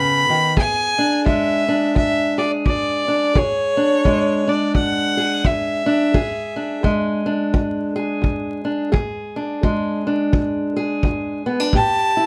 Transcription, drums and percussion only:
0.57 kick medium
1.26 kick medium
1.96 kick medium
2.66 kick medium
3.35 kick medium
4.05 kick medium
4.75 kick medium
5.45 kick medium
6.14 kick medium
6.84 kick medium
7.54 kick medium
8.24 kick medium
8.94 kick medium
9.63 kick medium
10.33 kick medium
11.03 kick medium
11.73 kick medium

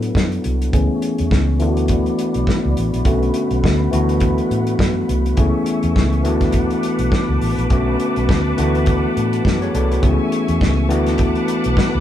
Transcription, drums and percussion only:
0.02 closed hi-hat soft
0.15 kick medium
0.15 snare medium
0.32 closed hi-hat soft
0.44 closed hi-hat medium
0.62 closed hi-hat soft
0.73 kick loud
0.73 closed hi-hat medium
1.02 closed hi-hat medium
1.18 closed hi-hat soft
1.31 kick loud
1.31 snare loud
1.60 closed hi-hat medium
1.77 closed hi-hat soft
1.88 kick medium
1.88 closed hi-hat medium
2.06 closed hi-hat soft
2.19 closed hi-hat medium
2.34 closed hi-hat soft
2.47 kick loud
2.47 snare medium
2.77 closed hi-hat medium
2.94 closed hi-hat soft
3.05 kick loud
3.05 closed hi-hat medium
3.23 closed hi-hat soft
3.34 closed hi-hat medium
3.51 closed hi-hat soft
3.64 kick medium
3.64 snare loud
3.93 closed hi-hat medium
4.09 closed hi-hat soft
4.20 kick medium
4.20 closed hi-hat medium
4.38 closed hi-hat soft
4.51 closed hi-hat medium
4.67 closed hi-hat soft
4.79 kick medium
4.79 snare loud
5.09 closed hi-hat medium
5.26 closed hi-hat soft
5.37 kick loud
5.37 closed hi-hat medium
5.66 closed hi-hat medium
5.83 closed hi-hat soft
5.96 kick loud
5.96 snare loud
6.13 closed hi-hat soft
6.25 closed hi-hat medium
6.41 kick medium
6.41 snare soft
6.41 closed hi-hat soft
6.52 kick medium
6.52 closed hi-hat medium
6.71 closed hi-hat soft
6.83 closed hi-hat medium
6.99 closed hi-hat soft
7.12 kick loud
7.12 snare loud
7.41 open hi-hat medium
7.59 closed hi-hat soft
7.70 kick loud
7.70 closed hi-hat medium
8.00 closed hi-hat medium
8.16 closed hi-hat soft
8.29 kick loud
8.29 snare loud
8.58 closed hi-hat medium
8.75 closed hi-hat soft
8.86 kick loud
8.86 closed hi-hat medium
9.17 closed hi-hat medium
9.33 closed hi-hat soft
9.45 kick medium
9.45 snare medium
9.62 closed hi-hat soft
9.75 closed hi-hat medium
9.92 closed hi-hat soft
10.03 kick medium
10.03 closed hi-hat medium
10.32 closed hi-hat medium
10.48 closed hi-hat soft
10.61 kick medium
10.61 snare loud
10.90 closed hi-hat medium
11.06 snare soft
11.06 closed hi-hat soft
11.18 kick medium
11.18 closed hi-hat medium
11.35 closed hi-hat soft
11.48 closed hi-hat medium
11.64 closed hi-hat soft
11.77 kick medium
11.77 snare loud

